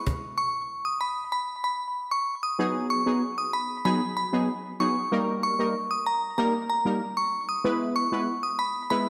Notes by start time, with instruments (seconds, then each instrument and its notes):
0.06 cajon bass, cajon slap
0.38 synth bell C#6
0.85 synth bell D#6
1.01 synth bell B5
1.32 synth bell B5
1.64 synth bell B5
2.11 synth bell C#6
2.43 synth bell D#6
2.59 synth stab F#3 B3 D#4 G#4
2.90 synth bell C#6
3.06 synth stab F#3 B3 D#4 G#4
3.38 synth bell D#6
3.53 synth bell B5
3.85 synth stab F#3 B3 D#4 G#4, synth bell B5
4.17 synth bell B5
4.32 synth stab F#3 B3 D#4 G#4
4.80 synth stab F#3 B3 D#4 G#4, synth bell C#6
5.11 synth stab G3 A#3 D#4 A#4
5.43 synth bell C#6
5.59 synth stab G3 A#3 D#4 A#4
5.91 synth bell D#6
6.06 synth bell A#5
6.38 synth stab G3 A#3 D#4 A#4, synth bell A#5
6.70 synth bell A#5
6.85 synth stab G3 A#3 D#4 A#4
7.17 synth bell C#6
7.49 synth bell D#6
7.64 synth stab G#3 B3 E4 B4
7.96 synth bell C#6
8.12 synth stab G#3 B3 E4 B4
8.43 synth bell D#6
8.59 synth bell B5
8.90 synth stab G#3 B3 E4 B4, synth bell B5